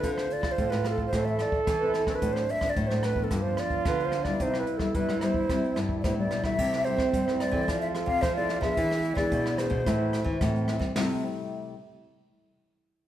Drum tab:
CC |----------------|----------------|----------------|x---------------|
HH |x-x-xxx-xxx-x-x-|xxx-xxx-x-xxxxxx|x-x-xxx-xxx-x-x-|--x-xxx-xxx-xxx-|
SD |-r-r-rr-r-r-r-rr|-r-r-rr-r-r-r-rr|-r-r-rr-r-r-r-rr|-r-r-rr-r-r-r-rr|
BD |o--oo--oo--oo--o|o--oo--oo--oo--o|o--oo--oo--oo--o|o--oo--oo--oo--o|

CC |----------------|----------------|
HH |x-x-xxxxx-x-xxx-|o---------------|
SD |-r-r-rr-r-r-r-rr|o---------------|
BD |o--oo--oo--oo--o|----------------|